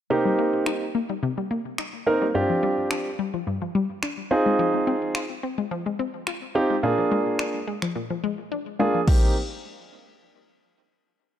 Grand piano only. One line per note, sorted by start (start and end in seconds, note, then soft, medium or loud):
0.10 0.83 A#3 medium
0.10 0.83 C4 medium
0.10 0.83 D#4 medium
0.10 0.83 G4 medium
2.07 2.25 A#3 medium
2.07 2.25 C4 medium
2.07 2.25 D#4 medium
2.07 2.25 A#4 medium
2.35 3.07 C4 medium
2.35 3.07 D4 medium
2.35 3.07 F4 medium
2.35 3.08 G4 medium
4.31 5.21 C4 medium
4.31 5.21 D#4 medium
4.31 5.21 F4 medium
4.31 5.21 G#4 medium
6.55 6.74 C4 medium
6.55 6.74 D#4 medium
6.55 6.74 F4 medium
6.55 6.74 G4 medium
6.83 7.56 A#3 medium
6.83 7.56 D4 medium
6.83 7.56 F4 medium
6.83 7.56 G#4 medium
8.79 8.98 A#3 medium
8.79 8.98 D4 medium
8.79 8.98 F4 medium
8.79 8.98 G#4 medium
9.08 9.34 A#3 medium
9.08 9.34 C4 medium
9.08 9.34 D#4 medium
9.08 9.34 G4 medium